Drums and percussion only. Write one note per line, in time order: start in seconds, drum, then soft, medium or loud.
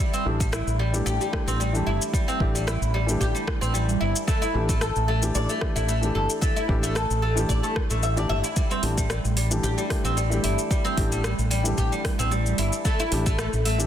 0.14 shaker soft
0.40 kick loud
0.40 shaker medium
0.53 cross-stick medium
0.53 shaker medium
0.67 shaker soft
0.94 shaker medium
1.07 shaker medium
1.21 shaker soft
1.33 kick loud
1.33 cross-stick medium
1.48 shaker medium
1.61 shaker medium
1.75 shaker soft
2.02 shaker medium
2.14 kick loud
2.14 shaker medium
2.29 shaker soft
2.40 kick loud
2.55 shaker medium
2.68 cross-stick medium
2.68 shaker medium
2.82 shaker soft
3.09 shaker medium
3.21 kick medium
3.21 shaker medium
3.36 shaker soft
3.48 kick loud
3.48 cross-stick medium
3.62 shaker medium
3.75 shaker medium
3.89 shaker soft
4.16 shaker medium
4.28 kick loud
4.28 shaker medium
4.43 shaker soft
4.69 kick loud
4.69 shaker medium
4.81 cross-stick medium
4.81 shaker medium
4.96 shaker soft
5.22 shaker medium
5.35 shaker medium
5.49 shaker soft
5.61 kick loud
5.61 cross-stick medium
5.76 shaker medium
5.89 shaker medium
6.03 shaker soft
6.30 shaker medium
6.42 kick loud
6.42 shaker medium
6.57 shaker soft
6.69 kick loud
6.83 shaker medium
6.96 cross-stick medium
6.96 shaker medium
7.11 shaker soft
7.37 shaker medium
7.49 kick medium
7.49 shaker medium
7.64 shaker soft
7.76 kick loud
7.76 cross-stick medium
7.90 shaker medium
8.03 shaker medium
8.17 shaker soft
8.44 shaker medium
8.56 kick loud
8.56 shaker medium
8.71 shaker soft
8.83 open hi-hat medium
8.98 kick medium
8.98 shaker medium
9.10 cross-stick medium
9.10 shaker soft
9.25 shaker soft
9.37 open hi-hat medium
9.51 shaker medium
9.64 shaker medium
9.78 shaker soft
9.90 kick loud
9.90 cross-stick medium
9.90 open hi-hat medium
10.05 shaker medium
10.17 shaker medium
10.32 shaker soft
10.44 open hi-hat medium
10.58 shaker medium
10.71 kick loud
10.71 shaker medium
10.85 shaker soft
10.97 kick medium
10.97 open hi-hat medium
11.12 shaker medium
11.24 cross-stick medium
11.24 shaker medium
11.39 shaker soft
11.51 open hi-hat medium
11.65 shaker medium
11.78 kick medium
11.78 shaker soft
11.93 shaker soft
12.05 kick loud
12.05 cross-stick medium
12.05 open hi-hat medium
12.19 shaker medium
12.32 shaker soft
12.46 shaker soft
12.58 open hi-hat medium
12.73 shaker medium
12.85 kick loud
12.85 shaker medium
13.00 shaker soft
13.12 open hi-hat medium
13.26 kick medium
13.26 shaker medium
13.39 cross-stick medium
13.39 shaker medium
13.53 shaker soft
13.65 open hi-hat medium
13.80 shaker medium